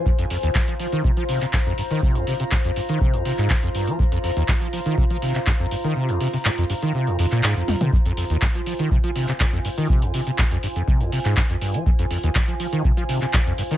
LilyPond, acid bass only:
\new Staff \with { instrumentName = "Acid bass" } { \clef bass \time 4/4 \key f \minor \tempo 4 = 122 f,16 f,16 f,16 ees,16 aes,16 f16 f16 ees16 c16 f16 c16 c16 aes,16 f,16 g,16 ees16 | c16 f,16 c16 c16 aes,16 f,16 g,16 ees16 c16 f,16 c16 aes,16 r16 f,16 g,16 f16 | f,16 f,16 f,16 ees,16 aes,16 f16 f16 ees16 c16 f16 c16 c16 aes,16 f,16 g,16 ees16 | c16 f,16 c16 c16 aes,16 f,16 g,16 ees16 c16 f,16 f,16 bes,16 aes,16 f,16 f,16 c16 |
f,16 f,16 f,16 ees,16 aes,16 f16 f16 ees16 c16 f16 c16 c16 aes,16 f,16 g,16 ees16 | c16 f,16 c16 c16 aes,16 f,16 g,16 f,16 c16 f,16 c16 aes,16 r16 f,16 g,16 f16 | f,16 f,16 f,16 ees,16 aes,16 f16 f16 ees16 r16 f16 c16 c16 aes,16 f,16 g,16 ees16 | }